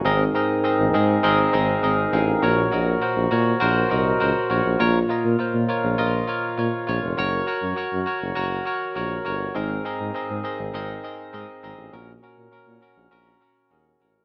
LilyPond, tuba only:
\new Staff \with { instrumentName = "Tuba" } { \clef bass \time 4/4 \key ges \lydian \tempo 4 = 101 aes,,8 r8. aes,,16 aes,8 aes,,8 aes,,8 aes,,8 a,,8 | bes,,8 bes,,8 r16 bes,,16 bes,8 bes,,8 c,8 des,16 r16 bes,,16 bes,,16 | bes,,8 r16 bes,16 bes,16 bes,16 r16 bes,,16 bes,,8 r8 bes,16 r16 bes,,16 f,,16 | ges,,8 r16 ges,16 ges,16 ges,16 r16 ges,,16 ges,,8 r8 bes,,8 g,,8 |
aes,,8 r16 aes,16 aes,16 aes,16 r16 aes,,16 aes,,8 r8 aes,16 r16 aes,,16 a,,16 | bes,,8 r16 bes,16 bes,16 bes,16 r16 bes,,16 bes,,8 r8 ees,8 a,,8 | }